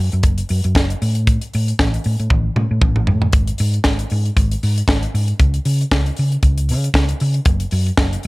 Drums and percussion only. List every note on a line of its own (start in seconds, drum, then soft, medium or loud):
0.12 closed hi-hat soft
0.23 kick loud
0.23 closed hi-hat medium
0.38 closed hi-hat soft
0.49 open hi-hat medium
0.64 closed hi-hat medium
0.75 kick loud
0.75 snare medium
0.90 closed hi-hat soft
1.02 open hi-hat medium
1.15 closed hi-hat soft
1.27 kick loud
1.27 closed hi-hat medium
1.41 closed hi-hat soft
1.54 open hi-hat medium
1.68 closed hi-hat soft
1.79 kick loud
1.79 snare loud
1.94 closed hi-hat soft
2.04 open hi-hat medium
2.20 closed hi-hat soft
2.30 kick loud
2.30 high tom medium
2.56 mid tom medium
2.81 kick loud
2.81 mid tom medium
2.96 mid tom medium
3.07 floor tom loud
3.22 floor tom medium
3.33 kick loud
3.33 closed hi-hat medium
3.47 closed hi-hat soft
3.58 open hi-hat medium
3.74 closed hi-hat soft
3.84 kick medium
3.84 snare loud
3.99 closed hi-hat soft
4.10 open hi-hat soft
4.25 closed hi-hat soft
4.37 kick loud
4.37 closed hi-hat medium
4.52 closed hi-hat soft
4.63 open hi-hat medium
4.78 closed hi-hat medium
4.88 kick loud
4.88 snare loud
5.03 closed hi-hat soft
5.15 open hi-hat medium
5.28 closed hi-hat soft
5.40 kick loud
5.40 closed hi-hat medium
5.54 closed hi-hat soft
5.65 open hi-hat medium
5.81 closed hi-hat soft
5.91 kick loud
5.91 snare loud
6.06 closed hi-hat soft
6.16 open hi-hat medium
6.32 closed hi-hat soft
6.43 kick loud
6.43 closed hi-hat medium
6.58 closed hi-hat medium
6.69 open hi-hat medium
6.84 closed hi-hat soft
6.94 kick loud
6.94 snare loud
7.09 closed hi-hat soft
7.20 open hi-hat medium
7.34 closed hi-hat soft
7.45 kick loud
7.45 closed hi-hat medium
7.60 closed hi-hat soft
7.71 open hi-hat medium
7.87 closed hi-hat soft
7.97 kick loud
7.97 snare loud
8.13 closed hi-hat soft
8.23 open hi-hat medium